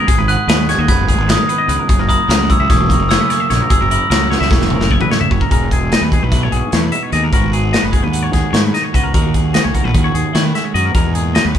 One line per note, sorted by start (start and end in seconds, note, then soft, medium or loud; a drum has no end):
0.00 0.11 F#4 medium
0.07 0.17 G#1 medium
0.07 1.66 G#2 medium
0.07 0.18 G#4 medium
0.07 kick loud
0.07 closed hi-hat medium
0.18 0.35 G#1 medium
0.18 0.27 B4 medium
0.28 2.08 F#4 medium
0.28 0.47 B4 medium
0.28 0.70 F#6 loud
0.28 closed hi-hat medium
0.47 0.73 D#2 medium
0.47 1.86 G#3 medium
0.47 0.68 B4 medium
0.47 snare loud
0.47 closed hi-hat medium
0.69 1.29 D#4 medium
0.69 0.79 C#5 medium
0.69 0.88 G#6 medium
0.69 snare soft
0.69 closed hi-hat medium
0.78 0.87 D#2 medium
0.78 0.89 D#5 medium
0.88 1.14 F#1 medium
0.88 1.48 B3 medium
0.88 1.08 B4 medium
0.88 1.30 G#6 medium
0.88 kick medium
0.88 snare soft
0.88 closed hi-hat medium
1.08 1.86 D#3 medium
1.08 1.28 G#4 medium
1.08 kick medium
1.08 closed hi-hat medium
1.18 1.35 G#1 medium
1.28 1.87 D#4 medium
1.28 1.38 B4 medium
1.28 1.86 D#6 medium
1.28 snare loud
1.28 closed hi-hat medium
1.38 1.49 A#4 medium
1.49 1.87 B3 medium
1.49 1.59 B4 medium
1.49 closed hi-hat medium
1.58 1.69 D#5 medium
1.67 1.77 C#2 medium
1.67 1.86 G#2 medium
1.67 1.79 B4 medium
1.67 closed hi-hat medium
1.79 1.88 A#4 medium
1.87 1.98 F#1 medium
1.87 3.49 F#2 medium
1.87 1.99 G#4 medium
1.87 kick loud
1.87 closed hi-hat medium
1.98 2.16 F#1 medium
1.98 2.08 A#4 medium
2.08 3.90 E4 medium
2.08 2.28 A#4 medium
2.08 2.50 D#6 medium
2.08 kick medium
2.08 closed hi-hat medium
2.27 2.54 C#2 medium
2.27 3.67 F#3 medium
2.27 2.50 A#4 medium
2.27 snare medium
2.27 closed hi-hat medium
2.49 3.09 C#4 medium
2.49 2.60 C#5 medium
2.49 2.70 E6 medium
2.49 kick medium
2.49 closed hi-hat medium
2.59 2.68 C#2 medium
2.59 2.70 E5 medium
2.69 2.95 E1 loud
2.69 3.29 A#3 medium
2.69 2.90 C#5 medium
2.69 2.90 D#6 medium
2.69 kick loud
2.69 snare soft
2.69 closed hi-hat medium
2.89 3.68 C#3 medium
2.89 3.10 A#4 medium
2.89 3.08 C#6 medium
2.89 kick medium
2.89 closed hi-hat medium
2.99 3.16 F#1 medium
3.09 3.68 C#4 medium
3.09 3.20 C#5 medium
3.09 3.70 E6 medium
3.09 snare medium
3.09 closed hi-hat medium
3.20 3.30 B4 medium
3.30 3.68 A#3 medium
3.30 3.40 C#5 medium
3.30 snare soft
3.30 closed hi-hat medium
3.40 3.50 E5 medium
3.50 3.59 A#1 medium
3.50 3.67 F#2 medium
3.50 3.62 C#5 medium
3.50 snare soft
3.50 closed hi-hat medium
3.62 3.71 A#4 medium
3.70 3.79 F#1 medium
3.70 4.89 F#2 medium
3.70 3.80 G#4 medium
3.70 5.27 E6 medium
3.70 kick loud
3.70 closed hi-hat medium
3.81 3.98 F#1 medium
3.81 3.90 A#4 medium
3.91 5.51 E4 medium
3.91 4.09 A#4 medium
3.91 closed hi-hat medium
4.10 4.36 C#2 medium
4.10 5.49 F#3 medium
4.10 4.30 A#4 medium
4.10 snare medium
4.10 closed hi-hat medium
4.30 4.39 B3 medium
4.30 4.40 C#5 medium
4.30 snare medium
4.39 4.49 C#2 medium
4.39 5.50 C#4 soft
4.39 4.51 E5 medium
4.39 snare soft
4.51 4.76 E1 medium
4.51 5.49 A#3 medium
4.51 4.72 C#5 medium
4.51 kick loud
4.51 snare medium
4.61 snare medium
4.70 5.48 C#3 medium
4.70 4.91 A#4 medium
4.70 mid tom medium
4.80 4.97 F#1 medium
4.80 snare medium
4.90 5.10 A#2 medium
4.90 5.01 C#5 medium
4.90 kick medium
5.01 5.11 B4 medium
5.01 mid tom medium
5.10 5.30 G#2 medium
5.10 5.20 C#5 medium
5.10 snare medium
5.21 5.31 E5 medium
5.21 floor tom medium
5.30 5.40 F#1 medium
5.30 5.49 F#2 medium
5.30 5.41 C#5 medium
5.30 kick medium
5.41 5.51 A#4 medium
5.41 kick medium
5.49 5.94 E1 medium
5.49 7.11 E2 medium
5.49 7.11 G#3 medium
5.49 5.91 D#4 soft
5.49 6.31 G#4 medium
5.49 5.72 A#4 medium
5.49 kick medium
5.49 closed hi-hat medium
5.71 5.92 G#4 medium
5.71 kick medium
5.71 closed hi-hat medium
5.92 6.92 D#4 medium
5.92 6.02 D#5 medium
5.92 snare loud
5.92 closed hi-hat medium
6.01 6.19 D#2 medium
6.01 6.12 B4 medium
6.11 7.32 E3 medium
6.11 6.23 G#4 medium
6.11 kick medium
6.11 closed hi-hat soft
6.22 6.48 B1 medium
6.22 6.43 B4 medium
6.32 6.41 E4 medium
6.32 kick medium
6.32 snare soft
6.32 closed hi-hat medium
6.41 7.12 F#4 soft
6.41 6.52 C#5 medium
6.50 6.61 B1 medium
6.50 7.31 B2 medium
6.50 6.72 G#4 medium
6.50 closed hi-hat medium
6.72 6.89 E2 medium
6.72 6.83 C#5 medium
6.72 snare medium
6.72 closed hi-hat medium
6.83 6.92 B4 medium
6.92 7.13 D#4 medium
6.92 7.03 E5 medium
6.92 closed hi-hat soft
7.03 7.12 C#5 medium
7.12 7.29 D#2 medium
7.12 7.31 E2 medium
7.12 7.32 G#3 medium
7.12 7.33 D#4 medium
7.12 7.31 G#4 medium
7.12 7.23 D#5 medium
7.12 closed hi-hat medium
7.24 7.32 A#4 medium
7.31 7.75 G#1 medium
7.31 8.91 G#2 medium
7.31 8.93 B3 medium
7.31 7.72 D#4 medium
7.31 8.12 F#4 medium
7.31 7.53 A#4 medium
7.31 kick medium
7.31 closed hi-hat medium
7.53 7.73 G#4 medium
7.53 closed hi-hat medium
7.72 8.73 D#4 medium
7.72 7.83 D#5 medium
7.72 snare loud
7.72 closed hi-hat medium
7.83 8.00 F#1 medium
7.83 7.92 B4 medium
7.91 9.10 G#3 medium
7.91 8.03 G#4 medium
7.91 kick medium
7.91 closed hi-hat medium
8.03 8.29 D#2 medium
8.03 8.23 B4 medium
8.12 8.93 F#4 medium
8.12 closed hi-hat medium
8.23 8.33 C#5 medium
8.32 8.42 D#2 medium
8.32 9.10 D#3 medium
8.32 8.53 G#4 medium
8.32 kick medium
8.32 snare soft
8.32 closed hi-hat medium
8.53 8.70 G#2 loud
8.53 8.63 C#5 medium
8.53 snare medium
8.53 closed hi-hat medium
8.63 8.73 B4 medium
8.73 8.94 D#4 medium
8.73 8.83 D#5 medium
8.73 snare soft
8.73 closed hi-hat medium
8.83 8.94 C#5 medium
8.93 9.11 C#2 medium
8.93 9.11 G#2 medium
8.93 9.11 B3 medium
8.93 9.14 D#4 soft
8.93 9.12 F#4 medium
8.93 9.04 D#5 medium
8.93 kick medium
8.93 closed hi-hat medium
9.04 9.13 A#4 medium
9.13 9.57 D#2 medium
9.13 9.91 D#3 medium
9.13 9.92 A#3 soft
9.13 9.53 C#4 medium
9.13 9.92 F#4 medium
9.13 9.34 A#4 medium
9.13 kick medium
9.13 closed hi-hat medium
9.34 9.54 G#4 medium
9.34 kick medium
9.34 closed hi-hat medium
9.54 9.92 C#4 medium
9.54 9.64 D#5 medium
9.54 snare medium
9.54 closed hi-hat medium
9.64 9.81 C#2 medium
9.64 9.75 C#5 medium
9.73 9.91 F#3 medium
9.73 9.84 A#4 medium
9.73 kick medium
9.73 closed hi-hat medium
9.84 9.93 A#1 medium
9.84 10.04 B4 medium
9.93 10.11 D#2 medium
9.93 10.91 D#3 medium
9.93 10.92 C#4 medium
9.93 10.33 F#4 medium
9.93 kick medium
9.93 closed hi-hat medium
10.04 10.14 C#5 medium
10.14 10.23 D#2 medium
10.14 10.34 G#4 medium
10.14 closed hi-hat medium
10.33 10.52 D#3 medium
10.33 10.43 E4 medium
10.33 10.45 C#5 medium
10.33 snare medium
10.33 closed hi-hat medium
10.43 10.73 F#4 medium
10.43 10.55 B4 medium
10.53 10.91 G#3 medium
10.53 10.65 E5 medium
10.53 snare soft
10.53 closed hi-hat medium
10.65 10.74 C#5 medium
10.74 10.91 F#2 medium
10.74 10.92 F#4 medium
10.74 10.84 D#5 medium
10.74 closed hi-hat medium
10.85 10.93 A#4 medium
10.94 11.13 E2 medium
10.94 11.37 E2 medium
10.94 11.59 G#3 soft
10.94 11.59 D#4 soft
10.94 11.59 G#4 medium
10.94 11.14 A#4 medium
10.94 kick medium
10.94 closed hi-hat medium
11.13 11.34 A#2 medium
11.13 11.35 G#4 medium
11.13 closed hi-hat medium
11.34 11.53 B2 medium
11.34 11.45 D#5 medium
11.34 snare loud
11.34 closed hi-hat medium
11.45 11.59 D#2 medium
11.45 11.56 B4 medium
11.53 11.59 C#3 medium
11.53 kick medium
11.53 closed hi-hat medium